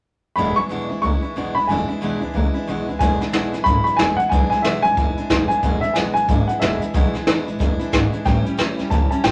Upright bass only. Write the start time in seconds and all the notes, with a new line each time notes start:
0.37 E1
0.57 muted upright bass stroke
0.70 B1
0.90 D2
1.03 C#2
1.23 muted upright bass stroke
1.36 B1
1.56 C#2
1.69 E1
2.02 B1
2.22 D2
2.34 C#2
2.55 muted upright bass stroke
2.67 B1
2.87 C#2
3.00 E1
3.20 muted upright bass stroke
3.33 B1
3.53 B1
3.66 G#1
3.98 E1
4.19 muted upright bass stroke
4.32 B1
4.52 muted upright bass stroke
4.64 B1
4.85 A1
4.97 E1
5.18 muted upright bass stroke
5.30 E1
5.50 muted upright bass stroke
5.63 E1
5.83 muted upright bass stroke
5.96 B1
6.16 B1
6.29 G#1
6.49 muted upright bass stroke
6.62 E1
6.82 muted upright bass stroke
6.94 B1
7.14 muted upright bass stroke
7.27 B1
7.48 A1
7.60 E1
7.80 muted upright bass stroke
7.93 G#1
8.13 muted upright bass stroke
8.26 A1
8.46 muted upright bass stroke
8.58 E2
8.79 E2
8.91 C#2
9.24 A1